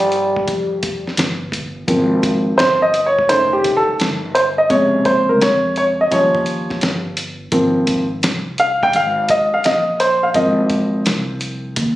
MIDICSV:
0, 0, Header, 1, 6, 480
1, 0, Start_track
1, 0, Key_signature, -4, "major"
1, 0, Tempo, 705882
1, 1279, Time_signature, 4, 2, 24, 8
1, 8131, End_track
2, 0, Start_track
2, 0, Title_t, "Grand piano"
2, 0, Program_c, 0, 0
2, 0, Note_on_c, 0, 53, 65
2, 0, Note_on_c, 0, 58, 51
2, 0, Note_on_c, 0, 61, 53
2, 0, Note_on_c, 0, 63, 56
2, 0, Note_on_c, 0, 67, 65
2, 1249, Note_off_c, 0, 53, 0
2, 1253, Note_off_c, 0, 58, 0
2, 1254, Note_off_c, 0, 61, 0
2, 1257, Note_off_c, 0, 63, 0
2, 1259, Note_off_c, 0, 67, 0
2, 1274, Note_on_c, 0, 53, 47
2, 1280, Note_on_c, 0, 58, 46
2, 1284, Note_on_c, 0, 60, 55
2, 1752, Note_on_c, 0, 72, 93
2, 1904, Note_off_c, 0, 72, 0
2, 1919, Note_on_c, 0, 75, 90
2, 1970, Note_off_c, 0, 53, 0
2, 1972, Note_off_c, 0, 58, 0
2, 1975, Note_off_c, 0, 60, 0
2, 2084, Note_off_c, 0, 75, 0
2, 2084, Note_on_c, 0, 73, 90
2, 2234, Note_on_c, 0, 51, 54
2, 2238, Note_on_c, 0, 57, 52
2, 2238, Note_on_c, 0, 72, 99
2, 2242, Note_on_c, 0, 61, 58
2, 2246, Note_off_c, 0, 73, 0
2, 2401, Note_on_c, 0, 67, 82
2, 2403, Note_off_c, 0, 72, 0
2, 2561, Note_on_c, 0, 69, 91
2, 2565, Note_off_c, 0, 67, 0
2, 2784, Note_off_c, 0, 69, 0
2, 2930, Note_off_c, 0, 51, 0
2, 2932, Note_off_c, 0, 57, 0
2, 2933, Note_off_c, 0, 61, 0
2, 2956, Note_on_c, 0, 72, 89
2, 2992, Note_off_c, 0, 72, 0
2, 3116, Note_on_c, 0, 75, 86
2, 3192, Note_on_c, 0, 49, 53
2, 3196, Note_on_c, 0, 56, 45
2, 3198, Note_on_c, 0, 73, 87
2, 3200, Note_on_c, 0, 48, 58
2, 3201, Note_off_c, 0, 75, 0
2, 3438, Note_on_c, 0, 72, 90
2, 3446, Note_off_c, 0, 73, 0
2, 3598, Note_on_c, 0, 70, 84
2, 3601, Note_off_c, 0, 72, 0
2, 3683, Note_off_c, 0, 70, 0
2, 3684, Note_on_c, 0, 73, 91
2, 3917, Note_off_c, 0, 73, 0
2, 3927, Note_on_c, 0, 73, 93
2, 3962, Note_off_c, 0, 73, 0
2, 4086, Note_on_c, 0, 75, 83
2, 4120, Note_off_c, 0, 75, 0
2, 4129, Note_off_c, 0, 49, 0
2, 4131, Note_off_c, 0, 56, 0
2, 4132, Note_off_c, 0, 48, 0
2, 4154, Note_on_c, 0, 53, 60
2, 4157, Note_on_c, 0, 55, 52
2, 4161, Note_on_c, 0, 61, 60
2, 4164, Note_on_c, 0, 73, 87
2, 4614, Note_off_c, 0, 73, 0
2, 4850, Note_off_c, 0, 53, 0
2, 4851, Note_off_c, 0, 55, 0
2, 4853, Note_off_c, 0, 61, 0
2, 5111, Note_on_c, 0, 53, 52
2, 5115, Note_on_c, 0, 58, 50
2, 5119, Note_on_c, 0, 60, 57
2, 5463, Note_off_c, 0, 53, 0
2, 5465, Note_off_c, 0, 58, 0
2, 5467, Note_off_c, 0, 60, 0
2, 5845, Note_on_c, 0, 77, 97
2, 6004, Note_off_c, 0, 77, 0
2, 6006, Note_on_c, 0, 79, 107
2, 6086, Note_off_c, 0, 79, 0
2, 6090, Note_on_c, 0, 77, 98
2, 6326, Note_on_c, 0, 75, 94
2, 6332, Note_off_c, 0, 77, 0
2, 6485, Note_off_c, 0, 75, 0
2, 6485, Note_on_c, 0, 77, 94
2, 6558, Note_off_c, 0, 77, 0
2, 6565, Note_on_c, 0, 75, 91
2, 6800, Note_on_c, 0, 72, 88
2, 6809, Note_off_c, 0, 75, 0
2, 6957, Note_on_c, 0, 77, 86
2, 6962, Note_off_c, 0, 72, 0
2, 6991, Note_off_c, 0, 77, 0
2, 7037, Note_on_c, 0, 53, 52
2, 7041, Note_on_c, 0, 58, 49
2, 7041, Note_on_c, 0, 75, 76
2, 7045, Note_on_c, 0, 60, 63
2, 7493, Note_off_c, 0, 75, 0
2, 8131, Note_off_c, 0, 53, 0
2, 8131, Note_off_c, 0, 58, 0
2, 8131, Note_off_c, 0, 60, 0
2, 8131, End_track
3, 0, Start_track
3, 0, Title_t, "Trombone"
3, 0, Program_c, 1, 57
3, 0, Note_on_c, 1, 55, 103
3, 807, Note_off_c, 1, 55, 0
3, 8131, End_track
4, 0, Start_track
4, 0, Title_t, "Upright bass"
4, 0, Program_c, 2, 32
4, 0, Note_on_c, 2, 43, 85
4, 297, Note_off_c, 2, 43, 0
4, 328, Note_on_c, 2, 41, 94
4, 701, Note_off_c, 2, 41, 0
4, 803, Note_on_c, 2, 31, 100
4, 1257, Note_off_c, 2, 31, 0
4, 1279, Note_on_c, 2, 32, 92
4, 1735, Note_off_c, 2, 32, 0
4, 1758, Note_on_c, 2, 31, 93
4, 2215, Note_off_c, 2, 31, 0
4, 2241, Note_on_c, 2, 29, 86
4, 2618, Note_off_c, 2, 29, 0
4, 2725, Note_on_c, 2, 31, 95
4, 3178, Note_off_c, 2, 31, 0
4, 3199, Note_on_c, 2, 34, 106
4, 3682, Note_off_c, 2, 34, 0
4, 3682, Note_on_c, 2, 41, 95
4, 4137, Note_off_c, 2, 41, 0
4, 4164, Note_on_c, 2, 39, 82
4, 4539, Note_off_c, 2, 39, 0
4, 4637, Note_on_c, 2, 31, 93
4, 5094, Note_off_c, 2, 31, 0
4, 5116, Note_on_c, 2, 32, 112
4, 5573, Note_off_c, 2, 32, 0
4, 5600, Note_on_c, 2, 36, 91
4, 6056, Note_off_c, 2, 36, 0
4, 6082, Note_on_c, 2, 32, 94
4, 6458, Note_off_c, 2, 32, 0
4, 6565, Note_on_c, 2, 34, 99
4, 7018, Note_off_c, 2, 34, 0
4, 7038, Note_on_c, 2, 32, 103
4, 7495, Note_off_c, 2, 32, 0
4, 7524, Note_on_c, 2, 36, 100
4, 7978, Note_off_c, 2, 36, 0
4, 8006, Note_on_c, 2, 39, 92
4, 8131, Note_off_c, 2, 39, 0
4, 8131, End_track
5, 0, Start_track
5, 0, Title_t, "Muted upright bass strokes"
5, 725, Note_on_c, 9, 29, 42
5, 793, Note_off_c, 9, 29, 0
5, 2641, Note_on_c, 9, 29, 45
5, 2709, Note_off_c, 9, 29, 0
5, 4565, Note_on_c, 9, 29, 45
5, 4633, Note_off_c, 9, 29, 0
5, 6484, Note_on_c, 9, 29, 48
5, 6552, Note_off_c, 9, 29, 0
5, 8131, End_track
6, 0, Start_track
6, 0, Title_t, "Drums"
6, 0, Note_on_c, 9, 42, 54
6, 68, Note_off_c, 9, 42, 0
6, 80, Note_on_c, 9, 42, 65
6, 148, Note_off_c, 9, 42, 0
6, 248, Note_on_c, 9, 36, 83
6, 316, Note_off_c, 9, 36, 0
6, 324, Note_on_c, 9, 42, 96
6, 327, Note_on_c, 9, 36, 91
6, 392, Note_off_c, 9, 42, 0
6, 395, Note_off_c, 9, 36, 0
6, 562, Note_on_c, 9, 42, 71
6, 564, Note_on_c, 9, 36, 93
6, 630, Note_off_c, 9, 42, 0
6, 632, Note_off_c, 9, 36, 0
6, 731, Note_on_c, 9, 38, 37
6, 798, Note_on_c, 9, 42, 103
6, 799, Note_off_c, 9, 38, 0
6, 810, Note_on_c, 9, 38, 104
6, 866, Note_off_c, 9, 42, 0
6, 878, Note_off_c, 9, 38, 0
6, 1034, Note_on_c, 9, 36, 74
6, 1043, Note_on_c, 9, 42, 68
6, 1102, Note_off_c, 9, 36, 0
6, 1111, Note_off_c, 9, 42, 0
6, 1278, Note_on_c, 9, 36, 101
6, 1279, Note_on_c, 9, 42, 84
6, 1346, Note_off_c, 9, 36, 0
6, 1347, Note_off_c, 9, 42, 0
6, 1518, Note_on_c, 9, 36, 84
6, 1518, Note_on_c, 9, 42, 65
6, 1586, Note_off_c, 9, 36, 0
6, 1586, Note_off_c, 9, 42, 0
6, 1762, Note_on_c, 9, 42, 80
6, 1768, Note_on_c, 9, 38, 106
6, 1830, Note_off_c, 9, 42, 0
6, 1836, Note_off_c, 9, 38, 0
6, 1998, Note_on_c, 9, 42, 61
6, 2066, Note_off_c, 9, 42, 0
6, 2166, Note_on_c, 9, 36, 84
6, 2234, Note_off_c, 9, 36, 0
6, 2239, Note_on_c, 9, 42, 101
6, 2307, Note_off_c, 9, 42, 0
6, 2478, Note_on_c, 9, 42, 76
6, 2482, Note_on_c, 9, 36, 87
6, 2546, Note_off_c, 9, 42, 0
6, 2550, Note_off_c, 9, 36, 0
6, 2718, Note_on_c, 9, 42, 88
6, 2730, Note_on_c, 9, 38, 107
6, 2786, Note_off_c, 9, 42, 0
6, 2798, Note_off_c, 9, 38, 0
6, 2961, Note_on_c, 9, 42, 67
6, 3029, Note_off_c, 9, 42, 0
6, 3196, Note_on_c, 9, 36, 105
6, 3196, Note_on_c, 9, 42, 90
6, 3264, Note_off_c, 9, 36, 0
6, 3264, Note_off_c, 9, 42, 0
6, 3435, Note_on_c, 9, 42, 66
6, 3436, Note_on_c, 9, 36, 86
6, 3503, Note_off_c, 9, 42, 0
6, 3504, Note_off_c, 9, 36, 0
6, 3682, Note_on_c, 9, 42, 81
6, 3688, Note_on_c, 9, 38, 110
6, 3750, Note_off_c, 9, 42, 0
6, 3756, Note_off_c, 9, 38, 0
6, 3917, Note_on_c, 9, 42, 62
6, 3985, Note_off_c, 9, 42, 0
6, 4159, Note_on_c, 9, 42, 96
6, 4162, Note_on_c, 9, 36, 94
6, 4227, Note_off_c, 9, 42, 0
6, 4230, Note_off_c, 9, 36, 0
6, 4315, Note_on_c, 9, 36, 87
6, 4383, Note_off_c, 9, 36, 0
6, 4393, Note_on_c, 9, 42, 74
6, 4461, Note_off_c, 9, 42, 0
6, 4559, Note_on_c, 9, 38, 36
6, 4563, Note_on_c, 9, 36, 90
6, 4627, Note_off_c, 9, 38, 0
6, 4631, Note_off_c, 9, 36, 0
6, 4633, Note_on_c, 9, 42, 99
6, 4645, Note_on_c, 9, 38, 104
6, 4701, Note_off_c, 9, 42, 0
6, 4713, Note_off_c, 9, 38, 0
6, 4875, Note_on_c, 9, 42, 75
6, 4943, Note_off_c, 9, 42, 0
6, 5112, Note_on_c, 9, 42, 98
6, 5115, Note_on_c, 9, 36, 101
6, 5180, Note_off_c, 9, 42, 0
6, 5183, Note_off_c, 9, 36, 0
6, 5352, Note_on_c, 9, 42, 69
6, 5354, Note_on_c, 9, 36, 91
6, 5420, Note_off_c, 9, 42, 0
6, 5422, Note_off_c, 9, 36, 0
6, 5597, Note_on_c, 9, 42, 82
6, 5602, Note_on_c, 9, 38, 116
6, 5665, Note_off_c, 9, 42, 0
6, 5670, Note_off_c, 9, 38, 0
6, 5835, Note_on_c, 9, 42, 64
6, 5903, Note_off_c, 9, 42, 0
6, 6003, Note_on_c, 9, 36, 84
6, 6071, Note_off_c, 9, 36, 0
6, 6075, Note_on_c, 9, 42, 102
6, 6143, Note_off_c, 9, 42, 0
6, 6314, Note_on_c, 9, 42, 79
6, 6320, Note_on_c, 9, 36, 95
6, 6382, Note_off_c, 9, 42, 0
6, 6388, Note_off_c, 9, 36, 0
6, 6556, Note_on_c, 9, 42, 92
6, 6568, Note_on_c, 9, 38, 117
6, 6624, Note_off_c, 9, 42, 0
6, 6636, Note_off_c, 9, 38, 0
6, 6799, Note_on_c, 9, 42, 75
6, 6867, Note_off_c, 9, 42, 0
6, 7034, Note_on_c, 9, 42, 93
6, 7036, Note_on_c, 9, 36, 106
6, 7102, Note_off_c, 9, 42, 0
6, 7104, Note_off_c, 9, 36, 0
6, 7273, Note_on_c, 9, 42, 73
6, 7276, Note_on_c, 9, 36, 89
6, 7341, Note_off_c, 9, 42, 0
6, 7344, Note_off_c, 9, 36, 0
6, 7519, Note_on_c, 9, 42, 81
6, 7525, Note_on_c, 9, 38, 112
6, 7587, Note_off_c, 9, 42, 0
6, 7593, Note_off_c, 9, 38, 0
6, 7757, Note_on_c, 9, 42, 69
6, 7825, Note_off_c, 9, 42, 0
6, 7999, Note_on_c, 9, 42, 105
6, 8003, Note_on_c, 9, 36, 97
6, 8067, Note_off_c, 9, 42, 0
6, 8071, Note_off_c, 9, 36, 0
6, 8131, End_track
0, 0, End_of_file